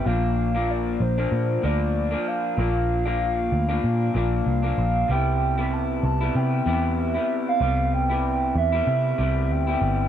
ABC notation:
X:1
M:4/4
L:1/16
Q:"Swing 16ths" 1/4=95
K:C
V:1 name="Soft synth lead"
f4 d2 c4 d4 f2- | f12 f4 | g4 a2 a2 g4 e3 f- | f2 g4 e6 g4 |]
V:2 name="Clean electric guitar" clef=bass
[_B,,F,_B,D]3 [B,,F,B,D]4 [B,,F,B,D]3 [B,,F,B,D]3 [B,,F,B,D]3 | [_B,,F,_B,D]3 [B,,F,B,D]4 [B,,F,B,D]3 [B,,F,B,D]3 [B,,F,B,D]3 | [C,G,B,E]3 [C,G,B,E]4 [C,G,B,E]3 [C,G,B,E]3 [C,G,B,E]3 | [C,G,B,]3 [C,G,B,E]4 [C,G,B,E]3 [C,G,B,E]3 [C,G,B,E]3 |]
V:3 name="Picked electric bass" clef=bass
_B,,,6 B,,,2 _B,,2 D,,4 z2 | _B,,,6 D,,2 _B,,2 B,,,2 C,,2 B,,,2 | C,,6 C,,2 C,2 E,,4 z2 | C,,6 E,,2 C,2 C,,2 D,,2 G,,,2 |]